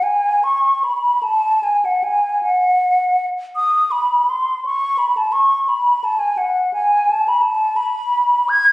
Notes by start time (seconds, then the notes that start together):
0.03 G#5
0.44 C#6
0.84 B5
1.23 A5
1.63 G#5
1.85 F#5
2.04 G#5
2.43 F#5
3.56 D#6
3.91 B5
4.30 C6
4.65 C#6
4.98 B5
5.17 A5
5.32 C#6
5.68 B5
6.04 A5
6.19 G#5
6.38 F#5
6.73 G#5
7.10 A5
7.28 B5
7.42 A5
7.76 B5
8.49 G#6